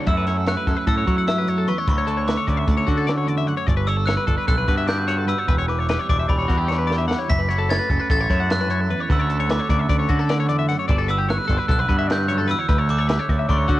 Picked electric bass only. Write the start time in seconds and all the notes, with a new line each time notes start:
0.07 F#2
0.67 F#2
0.87 A2
1.07 F#3
1.88 D2
2.48 D2
2.68 D2
2.88 D3
3.67 G1
4.28 G1
4.48 B1
4.68 G2
5.48 E1
6.09 E1
6.29 E1
6.49 E2
7.30 F#1
7.90 F#1
8.10 A1
8.30 F#2
9.10 D2
9.69 D2
9.89 D2
10.09 D3
10.89 G1
11.49 G1
11.69 B1
11.89 G2
12.69 D2
13.29 D2
13.49 D2
13.69 D3